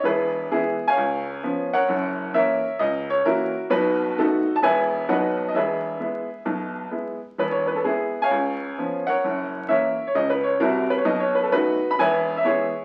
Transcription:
X:1
M:4/4
L:1/16
Q:"Swing" 1/4=131
K:E
V:1 name="Upright piano"
[EGB]4 [B,EG]3 [c=fg]6- [cfg] [^Ac^f]2- | [^Acf]4 [Ace]4 d2 c2 [EFA]4 | [DFB]4 [DFA]3 a [Beg]4 [Bdf]3 d | [GBe]12- [GBe]2 z2 |
B c B A [B,EG]3 [c=fg]6- [cfg] [^Ac^f]2- | [^Acf]4 [Ace]3 c d B c2 [EFA]2 B c | d c B A [DFB]3 b [Beg]3 e [EGc]4 |]
V:2 name="Upright piano" clef=bass
[E,,,E,,]4 [E,G,]4 [C,,C,]4 [^E,B,C]4 | [F,,,F,,]4 [E,^A,C]4 [C,,C,]4 [E,A,C]4 | [B,,,B,,]4 [D,A,B,]4 [E,,,E,,E,G,B,]4 [B,,,B,,F,B,D]4 | [E,,,E,,]4 [G,B,E]4 [B,,,B,,]4 [G,B,E]4 |
[E,,,E,,]4 G,4 [C,,C,]4 [^E,B,C]4 | [F,,,F,,]4 [E,^A,C]4 [C,,C,]4 [=C,,=C,]4 | [B,,,B,,]4 [D,A,B,]4 [E,,,E,,]4 [E,G,B,]4 |]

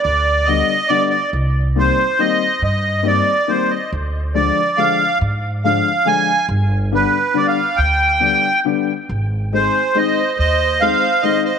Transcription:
X:1
M:3/4
L:1/16
Q:1/4=140
K:Cm
V:1 name="Accordion"
d4 e4 d2 d2 | z4 c4 e4 | e4 d4 c2 e2 | z4 d4 f4 |
z4 f4 a4 | z4 =B4 d f3 | g8 z4 | z4 c4 e4 |
e4 f4 e2 e2 |]
V:2 name="Violin"
z12 | z12 | z12 | z12 |
z12 | z12 | z12 | z4 A4 c4 |
c4 c4 c2 c2 |]
V:3 name="Upright piano" clef=bass
z4 [D,G,=B,D]2 z2 [D,G,B,D]2 z2 | z4 [E,G,B,C]2 z2 [E,G,B,C]2 z2 | z4 [E,G,B,C]2 z2 [E,G,B,C]2 z2 | z4 [D,F,A,D]2 z2 [D,F,A,D]2 z2 |
z4 [D,F,A,D]2 z2 [D,F,A,D]2 z2 | z4 [D,G,=B,D]2 z2 [D,G,B,D]2 z2 | z4 [D,G,=B,D]2 z2 [D,G,B,D]2 z2 | z4 [E,A,CE]2 z2 [E,A,CE]2 z2 |
z4 [E,A,CE]2 z2 [E,A,CE]2 z2 |]
V:4 name="Upright bass" clef=bass
D,,8 z4 | C,,8 z4 | G,,8 z4 | D,,8 z4 |
A,,8 z4 | G,,,8 z4 | D,,8 z4 | A,,,8 z4 |
E,,8 z4 |]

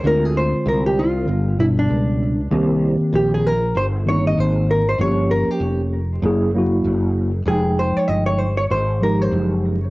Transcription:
X:1
M:4/4
L:1/16
Q:"Swing 16ths" 1/4=97
K:Fm
V:1 name="Hollow-body jazz guitar"
B A c2 B G F4 =E =D4 z | z4 G A B2 c2 d e c2 B c | d2 B G2 z8 z3 | A2 c d e d c d c2 B c2 z3 |]
V:2 name="Tine electric piano"
[=D,A,CF]6 z2 [D,G,=B,F]2 [=B,,G,B,=D]4 z2 | [E,B,CG]6 z4 [E,B,CE]4 z2 | [F,B,DG]6 z2 [_G,B,_FA]2 [G,B,F_G]4 z2 | [F,A,Eg]6 z4 [F,A,EG]4 z2 |]
V:3 name="Fretless electric bass" clef=bass
=D,,3 z C,,4 G,,,4 _D,,4 | C,,3 z B,,,4 G,,,4 A,,,4 | G,,,3 z F,,,4 _G,,,4 G,,,4 | F,,,3 z G,,,4 A,,,4 _G,,,4 |]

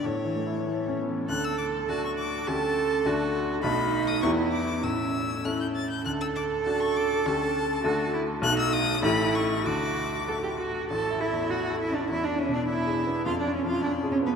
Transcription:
X:1
M:2/4
L:1/16
Q:1/4=101
K:D
V:1 name="Violin"
c6 z2 | f' e' d'2 a c' d'2 | a6 z2 | b3 ^d' c'2 =d'2 |
e'4 f' g' a' g' | f' e' d'2 a c' d'2 | a6 z2 | f' e' ^d'2 b2 c'2 |
d'6 z2 | [K:A] a2 e2 f2 e d | e d c d e4 | ^e d c e d2 c B |]
V:2 name="Cello"
z2 A,2 A,2 B,2 | A4 F4 | A4 F4 | ^D4 E4 |
C6 z2 | A8- | A4 F2 E2 | ^D4 E4 |
F4 A G F2 | [K:A] A2 E2 F2 E D | E D C D E4 | ^E D C E D2 C B, |]
V:3 name="Grand piano"
(3A,,2 E,2 E2 (3E,2 C2 E,2 | D,,4 [A,DF]4 | [D,,A,CG]4 [D,,A,DF]4 | [B,,,A,^DF]4 [E,,B,EG]4 |
A,,4 [CEA]4 | D,,4 [DFA]4 | [D,,CGA]4 [D,,A,FA]4 | [B,,,A,FA]4 [A,,,A,GA]4 |
D,,4 [A,FA]4 | [K:A] (3A,,,2 E2 E,,2 (3E2 A2 C2 | (3E,,2 D2 B,,2 (3D2 G2 B,2 | (3^E,,2 C2 ^E,2 (3C2 G2 B,2 |]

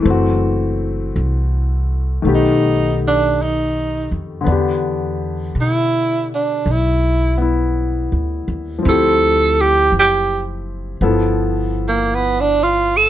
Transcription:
X:1
M:4/4
L:1/16
Q:"Swing" 1/4=55
K:Ephr
V:1 name="Tenor saxophone"
z8 ^D2 =D2 ^D2 z2 | z4 E2 D2 E2 z6 | A2 G2 G2 z4 z _B, =B, D F A |]
V:2 name="Grand piano"
[E,A,C^F]8 [^D,A,B,G]8 | [D,B,DG]8- [D,B,DG]2 [B,E]6 | [F,CEG]8 [F,B,EA]8 |]
V:3 name="Upright bass" clef=bass
^F,,,4 C,,4 B,,,6 =F,,2 | E,,4 B,,4 B,,,4- (3B,,,2 D,,2 _E,,2 | D,,4 ^F,,,4 G,,,8 |]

